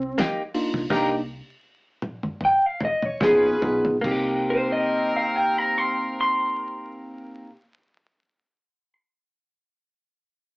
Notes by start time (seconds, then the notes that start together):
Already playing: C2 C4
0.18 A#3 D#4 G4, snare, closed hi-hat
0.54 A#3 D4 D#4 F4, open hi-hat
0.74 C2, kick, snare
0.89 C2 A#3 C4 D4 D#4 G4 A#4, kick, snare, crash
2.02 high tom
2.23 mid tom
2.41 mid tom
2.45 G5
2.66 F5
2.81 mid tom
2.85 D#5
3.02 C#5, mid tom
3.21 A#1 F3 B3 C#4 D#4 F4 G#4 B4, kick, snare, mid tom
3.62 B1 B3 D#4 F4 G#4, floor tom
3.85 floor tom
4.01 C2 A#3 C4 D#4, kick, crash
4.05 C4 G4 A#4
4.11 G4
4.50 C5
4.72 D#5
5.16 F5
5.36 G5
5.58 A#5
5.78 C6
6.21 C6